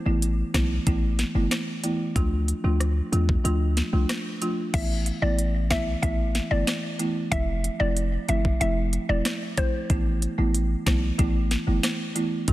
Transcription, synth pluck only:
4.74 E5
5.22 D5
5.71 E5
6.03 E5
6.51 D5
7.32 E5
7.80 D5
8.29 E5
8.61 E5
9.09 D5
9.58 C5

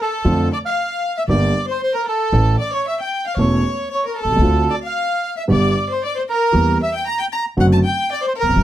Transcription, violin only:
0.02 A4
0.53 D5
0.66 F5
1.17 E5
1.28 D5
1.68 C5
1.82 C5
1.95 A#4
2.07 A4
2.59 D5
2.73 C#5
2.87 E5
3.01 G5
3.27 F5
3.37 C#5
3.91 C#5
4.06 A#4
4.17 A4
4.70 D5
4.83 F5
5.37 E5
5.50 D5
5.90 C5
6.04 D5
6.15 C5
6.29 A#4
6.83 E5
6.94 G5
7.07 A#5
7.19 G5
7.32 A#5
7.60 F#5
7.72 A5
7.84 G5
8.12 D5
8.22 C5
8.35 A#4

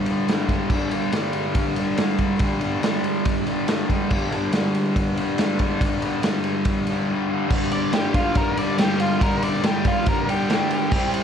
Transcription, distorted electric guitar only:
Already playing: G2
0.06 G3
0.11 D3
0.28 G2 D3
0.33 G3
0.48 G3
0.52 D3
0.70 G2 D3
0.76 G3
0.91 G3
0.95 D3
1.13 G2 D3 G3
1.77 G3
1.81 D3
1.97 G2 D3
2.02 G3
2.19 G3
2.23 D3
2.40 G2 D3
2.45 G3
2.60 G3
2.65 D3
2.81 G2 D3
2.86 G3
3.46 G3
3.51 D3
3.66 G2 D3
3.71 G3
3.87 G3
3.91 D3
4.09 G2 D3
4.14 G3
4.29 G3
4.35 D3
4.52 G2 D3 G3
5.17 G3
5.22 D3
5.37 G2 D3
5.42 G3
5.60 G3
5.65 D3
5.81 G2 D3
5.86 G3
6.02 G3
6.07 D3
6.21 G2 D3
6.27 G3
6.86 G3
6.91 D3
7.08 G2 D3
7.13 G3
7.29 G3
7.34 D3
7.48 G2 D3
7.54 G3
7.92 G2 D3
7.97 G3
8.15 G3
8.20 D3
8.55 G3
8.60 D3
8.77 G2 D3
8.83 G3
9.19 G2 D3
9.24 G3
9.61 G2 D3
9.66 G3
9.84 D3 G3
10.26 D3 G3
10.49 G2 D3
10.54 G3
10.91 C3 G3
10.95 C4

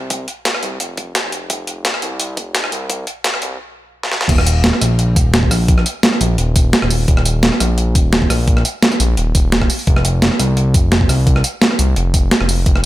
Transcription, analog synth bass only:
Already playing: C2
0.63 C2
0.80 F1
1.24 F1
1.50 F1
2.02 C2
2.37 F1
2.72 C2
3.42 C2
4.29 D#1
4.81 A#1
5.16 D#1
5.51 A#1
6.21 A#1
6.38 D#1
6.82 D#1
7.08 D#1
7.60 A#1
7.95 D#1
8.30 A#1
9.00 A#1
9.18 D#1
9.35 D#1
9.87 F1
10.40 C2
10.74 F1
11.09 C2
11.79 C2
11.96 F1
12.41 F1
12.66 F1

